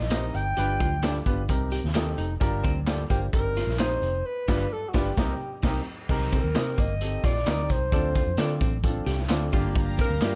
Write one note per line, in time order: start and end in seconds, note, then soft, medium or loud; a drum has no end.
0.00 0.29 A#1 medium
0.00 0.30 G2 medium
0.00 0.37 D#5 medium
0.00 snare soft
0.10 0.40 C4 medium
0.10 0.24 D#4 medium
0.10 0.40 D#4 medium
0.10 0.55 D#4 medium
0.10 0.24 G4 medium
0.10 0.40 G4 medium
0.10 0.40 A#4 medium
0.10 0.25 C5 medium
0.10 0.25 D#5 medium
0.10 snare loud
0.10 clap medium
0.10 closed hi-hat medium
0.10 tambourine loud
0.34 0.54 G1 medium
0.34 1.27 G5 medium
0.34 closed hi-hat medium
0.34 tambourine soft
0.56 0.77 G1 medium
0.56 1.23 G2 medium
0.56 0.86 D4 medium
0.56 0.86 F4 medium
0.56 0.72 G4 medium
0.56 0.86 G4 medium
0.56 0.86 B4 loud
0.56 closed hi-hat medium
0.56 tambourine soft
0.80 1.19 D2 medium
0.80 0.96 F4 medium
0.80 kick medium
0.80 closed hi-hat medium
0.80 tambourine medium
1.03 1.16 D4 medium
1.03 1.17 D4 medium
1.03 1.19 D4 medium
1.03 1.16 F4 medium
1.03 1.18 F4 medium
1.03 1.18 G4 medium
1.03 1.18 A4 medium
1.03 1.17 B4 medium
1.03 1.17 D5 medium
1.03 snare loud
1.03 clap medium
1.03 closed hi-hat medium
1.03 tambourine medium
1.26 1.46 G1 medium
1.26 1.42 B3 medium
1.26 1.40 D4 medium
1.26 1.41 F4 medium
1.26 1.41 G4 medium
1.26 1.41 B4 medium
1.26 kick medium
1.26 closed hi-hat medium
1.26 tambourine medium
1.49 1.78 C2 loud
1.49 2.14 C3 medium
1.49 1.78 C4 medium
1.49 1.78 D#4 medium
1.49 1.78 G4 medium
1.49 1.78 A#4 medium
1.49 kick medium
1.49 closed hi-hat loud
1.49 tambourine medium
1.71 1.87 G4 medium
1.71 closed hi-hat medium
1.71 tambourine medium
1.84 2.13 D#2 medium
1.84 snare soft
1.94 2.23 C4 medium
1.94 2.08 C4 medium
1.94 2.24 D#4 medium
1.94 2.24 G4 medium
1.94 2.08 G4 medium
1.94 2.24 A4 medium
1.94 2.09 A#4 medium
1.94 2.09 D#5 medium
1.94 snare loud
1.94 clap medium
1.94 closed hi-hat medium
1.94 tambourine medium
2.18 2.38 F1 medium
2.18 2.33 D#4 medium
2.18 closed hi-hat medium
2.18 tambourine soft
2.40 2.61 G1 loud
2.40 3.06 G2 medium
2.40 2.69 D4 loud
2.40 2.70 F4 loud
2.40 2.70 G4 loud
2.40 2.70 A#4 loud
2.40 kick loud
2.40 closed hi-hat medium
2.64 3.03 D2 medium
2.64 2.79 C4 medium
2.64 kick medium
2.64 closed hi-hat medium
2.64 tambourine medium
2.86 3.00 A#3 medium
2.86 3.01 D4 medium
2.86 3.02 F4 medium
2.86 3.01 F4 medium
2.86 3.02 G4 medium
2.86 3.01 G4 medium
2.86 3.02 A4 medium
2.86 3.01 D5 medium
2.86 snare loud
2.86 clap medium
2.86 closed hi-hat medium
2.86 tambourine medium
3.10 3.30 G1 medium
3.10 3.26 A#3 medium
3.10 3.25 D4 medium
3.10 3.25 F4 medium
3.10 3.21 G4 medium
3.10 3.25 G4 medium
3.10 3.25 C5 medium
3.10 kick medium
3.10 closed hi-hat medium
3.10 tambourine medium
3.33 3.62 G1 medium
3.33 3.98 G2 medium
3.33 3.62 C4 medium
3.33 3.62 D#4 medium
3.33 3.62 G4 medium
3.33 3.76 A#4 loud
3.33 3.62 A#4 medium
3.33 kick medium
3.33 closed hi-hat medium
3.33 tambourine medium
3.56 3.72 F4 medium
3.56 snare soft
3.56 closed hi-hat medium
3.56 tambourine medium
3.67 3.97 A#1 medium
3.67 snare soft
3.79 4.08 C4 medium
3.79 3.92 D#4 medium
3.79 4.23 D#4 medium
3.79 4.08 D#4 medium
3.79 3.92 G4 medium
3.79 4.08 G4 medium
3.79 4.27 C5 loud
3.79 3.93 C5 medium
3.79 4.08 C5 medium
3.79 3.93 D#5 medium
3.79 snare loud
3.79 clap medium
3.79 closed hi-hat medium
3.79 tambourine medium
4.02 4.21 F1 medium
4.02 closed hi-hat medium
4.02 tambourine soft
4.26 4.74 B4 loud
4.48 4.64 G1 medium
4.48 4.64 G2 medium
4.48 4.64 D4 medium
4.48 4.64 F4 loud
4.48 4.64 G4 medium
4.48 4.64 B4 medium
4.48 4.65 B4 medium
4.48 4.65 D5 medium
4.48 kick loud
4.48 snare loud
4.48 crash medium
4.73 4.90 A4 medium
4.89 4.97 F#4 medium
4.94 5.10 G1 medium
4.94 5.10 D4 loud
4.94 5.10 D4 medium
4.94 5.10 F4 medium
4.94 5.10 G4 medium
4.94 5.64 G4 medium
4.94 5.10 B4 loud
4.94 5.10 B4 medium
4.94 5.11 D5 loud
4.94 kick loud
4.94 snare medium
5.17 5.33 C2 loud
5.17 5.33 C3 medium
5.17 5.33 C4 medium
5.17 5.33 D#4 loud
5.17 5.33 D#4 medium
5.17 5.33 G4 loud
5.17 5.33 G4 medium
5.17 5.33 A#4 medium
5.17 5.34 A#4 loud
5.17 5.34 D#5 medium
5.17 kick loud
5.17 snare loud
5.63 5.79 C2 medium
5.63 5.79 C4 medium
5.63 5.79 D#4 medium
5.63 5.79 G4 medium
5.63 5.79 A#4 medium
5.63 5.80 D#5 medium
5.63 kick loud
5.63 snare medium
5.63 crash medium
6.09 6.38 C2 loud
6.09 6.75 C3 medium
6.09 6.38 C4 loud
6.09 6.38 D#4 loud
6.09 6.38 G4 loud
6.09 6.38 A#4 loud
6.09 kick loud
6.09 crash medium
6.32 6.48 C4 medium
6.32 6.82 A#4 medium
6.32 kick medium
6.32 closed hi-hat medium
6.32 tambourine medium
6.44 6.53 D#2 medium
6.55 6.75 C3 medium
6.55 6.84 C4 medium
6.55 6.68 D#4 medium
6.55 6.84 D#4 medium
6.55 6.68 G4 medium
6.55 6.84 G4 medium
6.55 6.69 A#4 medium
6.55 6.84 C5 medium
6.55 6.69 D#5 medium
6.55 snare loud
6.55 clap medium
6.55 closed hi-hat medium
6.55 tambourine medium
6.78 7.17 G1 medium
6.78 6.93 A#3 medium
6.78 7.27 D#5 loud
6.78 kick medium
6.78 closed hi-hat medium
6.78 tambourine medium
7.01 7.30 C4 medium
7.01 7.30 D#4 medium
7.01 7.30 G4 medium
7.01 7.30 A4 medium
7.01 closed hi-hat loud
7.01 tambourine medium
7.24 7.43 A#1 medium
7.24 7.39 F4 medium
7.24 7.73 D5 medium
7.24 kick medium
7.24 snare soft
7.24 closed hi-hat medium
7.24 tambourine medium
7.36 snare soft
7.46 7.66 D2 medium
7.46 7.75 C4 medium
7.46 7.60 D#4 medium
7.46 7.75 D#4 medium
7.46 7.90 D#4 medium
7.46 7.75 G4 medium
7.46 7.60 G4 medium
7.46 7.75 A#4 medium
7.46 7.60 A#4 medium
7.46 7.60 D#5 medium
7.46 snare loud
7.46 clap loud
7.46 closed hi-hat medium
7.46 tambourine loud
7.69 7.89 C2 medium
7.69 8.62 C5 medium
7.69 kick medium
7.69 closed hi-hat medium
7.69 tambourine soft
7.92 8.22 D2 loud
7.92 8.57 D3 medium
7.92 8.21 C4 medium
7.92 8.21 D4 medium
7.92 8.08 D4 medium
7.92 8.21 F4 medium
7.92 8.21 A4 loud
7.92 kick loud
7.92 closed hi-hat medium
7.92 tambourine soft
8.15 8.31 F4 medium
8.15 kick medium
8.15 closed hi-hat medium
8.15 tambourine medium
8.27 8.36 F2 medium
8.37 8.58 D3 loud
8.37 8.66 C4 medium
8.37 8.51 C4 medium
8.37 8.67 D4 medium
8.37 8.54 D4 medium
8.37 8.67 F4 medium
8.37 8.52 F4 medium
8.37 8.67 A4 medium
8.37 8.52 A4 medium
8.37 8.52 D5 medium
8.37 snare loud
8.37 clap medium
8.37 closed hi-hat medium
8.37 tambourine medium
8.61 9.00 A1 medium
8.61 8.76 C4 medium
8.61 kick medium
8.61 closed hi-hat medium
8.61 tambourine medium
8.83 9.12 C4 medium
8.83 9.13 D4 medium
8.83 9.13 F4 medium
8.83 9.13 A4 medium
8.83 kick loud
8.83 closed hi-hat loud
8.83 tambourine medium
9.06 9.26 C2 medium
9.06 9.22 G4 medium
9.06 snare soft
9.06 closed hi-hat medium
9.06 tambourine medium
9.19 snare soft
9.29 9.49 D2 medium
9.29 9.42 C4 medium
9.29 9.53 C4 medium
9.29 9.51 D4 medium
9.29 9.43 F4 medium
9.29 9.52 F4 medium
9.29 9.43 A4 medium
9.29 9.53 A4 medium
9.29 9.43 D5 medium
9.29 snare loud
9.29 clap loud
9.29 closed hi-hat medium
9.29 tambourine loud
9.52 10.01 G1 loud
9.52 10.18 G2 medium
9.52 9.58 A3 medium
9.52 10.08 D4 medium
9.52 9.68 F4 medium
9.52 10.08 F4 medium
9.52 10.08 G4 loud
9.52 kick medium
9.52 open hi-hat medium
9.52 tambourine soft
9.58 10.10 A#3 loud
9.75 10.35 G4 medium
9.75 10.35 F5 medium
9.75 10.35 A#5 loud
9.75 kick loud
9.75 closed hi-hat medium
9.98 10.14 C4 medium
9.98 10.35 A#4 medium
9.98 kick loud
9.98 closed hi-hat medium
9.98 tambourine medium
10.09 10.19 D2 medium
10.20 10.35 G2 medium
10.20 10.35 A#3 medium
10.20 10.34 A#3 medium
10.20 10.35 D4 medium
10.20 10.35 F4 medium
10.20 10.34 F4 medium
10.20 10.35 G4 medium
10.20 10.35 D5 medium
10.20 snare loud
10.20 clap medium
10.20 closed hi-hat medium
10.20 tambourine medium